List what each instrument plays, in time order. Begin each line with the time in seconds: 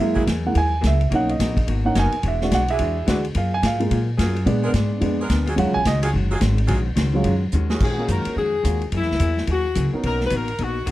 Already playing: grand piano E5
0.00 upright bass F#2, hollow-body jazz guitar F#3 A#3 E4 G#4, grand piano G#3 A#3 E4
0.14 saxophone section F#3 A#3 E4 G#4, kick
0.26 upright bass E2, hollow-body jazz guitar F#3 A#3 E4 G#4, kick, snare, hi-hat pedal, ride
0.46 grand piano G#3 A#3 E4 F#5
0.54 upright bass D#2, hollow-body jazz guitar F#3 A#3 E4 G#4, grand piano G#5, kick, ride
0.81 upright bass C#2, hollow-body jazz guitar F#3 A#3 E4 G#4, kick, snare, hi-hat pedal, ride
0.87 grand piano E5
1.01 ride
1.09 upright bass B1, hollow-body jazz guitar B2 A#3 D#4 F#4, grand piano A#3 C#4, kick, ride
1.14 grand piano D#4 F#5
1.29 grand piano D#5, ride
1.39 upright bass A#1, hollow-body jazz guitar B2 A#3 D#4 F#4, kick, snare, hi-hat pedal, ride
1.57 kick, ride
1.66 upright bass G#1, hollow-body jazz guitar B2 A#3 D#4 F#4, kick, ride
1.85 grand piano A#3 C#4 D#4 F#5
1.95 upright bass F#1, hollow-body jazz guitar B2 A#3 D#4 F#4, saxophone section F#3 B3 D#4 A#4, grand piano G#5, kick, snare, hi-hat pedal, ride
2.12 ride
2.23 upright bass E1, hollow-body jazz guitar E3 G#3 D4 F#4, kick, ride
2.28 grand piano E5
2.41 grand piano G#3 D4 F#4, snare
2.51 upright bass B1, hollow-body jazz guitar E3 G#3 D4 F#4, grand piano F#5, kick, snare, hi-hat pedal, ride
2.68 saxophone section F#3 D4 E4 G#4, grand piano E5, ride
2.79 upright bass E2, hollow-body jazz guitar E3 G#3 D4 F#4, kick, ride
3.06 upright bass D2, hollow-body jazz guitar E3 G#3 D4 F#4, saxophone section F#3 D4 E4 B4, grand piano G#3 D4 F#4, kick, snare, hi-hat pedal, ride
3.25 ride
3.34 upright bass F#2, hollow-body jazz guitar F#3 A#3 F4 G#4, grand piano F5, kick, ride
3.54 grand piano G#5
3.63 upright bass G#2, hollow-body jazz guitar F#3 A#3 F4 G#4, grand piano F5, kick, snare, hi-hat pedal, ride
3.80 grand piano G#3 A#3 F4, ride
3.91 upright bass A#2, hollow-body jazz guitar F#3 A#3 F4 G#4, kick, ride
4.17 upright bass F#2, hollow-body jazz guitar F#3 A#3 F4 G#4, saxophone section F#3 A#3 F4 G#4, kick, snare, hi-hat pedal, ride
4.36 ride
4.46 hollow-body jazz guitar A#2 G#3 B3 D4, upright bass A#2, grand piano G#3 B3 D4, kick, ride
4.64 saxophone section G#3 B3 D4 A#4
4.73 upright bass G#2, hollow-body jazz guitar A#2 G#3 B3 D4, kick, snare, hi-hat pedal, ride
5.01 upright bass F2, hollow-body jazz guitar A#2 G#3 B3 D4, grand piano G#3 B3 D4, kick, ride
5.20 saxophone section G#3 B3 D4 A#4
5.29 upright bass D2, hollow-body jazz guitar A#2 G#3 B3 D4, kick, snare, hi-hat pedal, ride
5.46 saxophone section F#3 C#4 F4 G#4, ride
5.56 upright bass D#2, hollow-body jazz guitar D#3 G#3 C#4 F#4, grand piano F#3 G#3 C#4 F4 F#5, kick, ride
5.67 upright bass C#2
5.74 upright bass A#1, grand piano G#5
5.85 upright bass C#2, hollow-body jazz guitar D#3 G#3 C#4 F#4, grand piano D#5, kick, snare, hi-hat pedal, ride
6.02 saxophone section F#3 C#4 F4 G#4, ride
6.13 upright bass F#1, hollow-body jazz guitar D#3 G#3 C#4 F#4, kick
6.30 saxophone section F#3 C#4 F4 G#4
6.40 upright bass G#1, hollow-body jazz guitar D#3 G#3 C#4 F#4, kick, snare, hi-hat pedal, ride
6.58 ride
6.67 upright bass A#1, hollow-body jazz guitar D#3 G#3 C#4, saxophone section F#3 C#4 F4 G#4, kick, ride
6.72 hollow-body jazz guitar F#4
6.96 upright bass C#2, hollow-body jazz guitar D#3 G#3 C#4 F#4, kick, snare, hi-hat pedal, ride
7.14 grand piano F#3 G#3 C#4 F4
7.24 upright bass F#2, hollow-body jazz guitar D#3 G#3 C#4 F#4, kick, ride
7.52 upright bass D#2, hollow-body jazz guitar D#3 G#3 C#4 F#4, hi-hat pedal
7.68 saxophone section D#2 F#3 C#4 F4 G#4, snare
7.80 upright bass A#2, hollow-body jazz guitar D#3 G#3 C#4 F#4, saxophone section G#4, kick, crash
7.98 grand piano A#3 C#4 F4 F#4 G#4
8.07 upright bass F#2, hollow-body jazz guitar D#3 G#3 C#4 F#4, kick, hi-hat pedal, ride
8.12 saxophone section A#4
8.25 muted upright bass stroke, ride
8.36 upright bass F2, hollow-body jazz guitar D#3 G#3 C#4 F#4, saxophone section G#4, kick
8.63 upright bass D#2, hollow-body jazz guitar D#3 G#3 C#4 F#4, grand piano A#3 C#4 F4 F#4 G#4, kick, hi-hat pedal, ride
8.82 ride
8.92 upright bass F#2, hollow-body jazz guitar F#3 A#3 E4 G#4, kick, ride
8.96 saxophone section E4
9.02 upright bass E2, snare
9.11 upright bass C#2, snare
9.20 upright bass E2, hollow-body jazz guitar F#3 A#3 E4 G#4, kick, hi-hat pedal, ride
9.37 snare
9.46 upright bass D#2, hollow-body jazz guitar F#3 A#3 E4 G#4, kick, ride
9.52 saxophone section F#4
9.75 upright bass C#2, hollow-body jazz guitar F#3 A#3 E4 G#4, kick, hi-hat pedal, ride
9.93 grand piano B3 C#4 D#4 F#4 A#4, muted upright bass stroke
10.03 upright bass B1, hollow-body jazz guitar B2 A#3 D#4 F#4, saxophone section A#4, kick, ride
10.21 snare
10.26 saxophone section B4, hi-hat pedal, ride
10.31 upright bass A1, hollow-body jazz guitar B2 A#3 D#4 F#4, kick
10.36 saxophone section A#4
10.48 ride
10.58 upright bass A#1, hollow-body jazz guitar B2 A#3 D#4 F#4, kick, ride
10.63 saxophone section F#4
10.86 upright bass B1, hollow-body jazz guitar B2 A#3 D#4 F#4, kick, hi-hat pedal, ride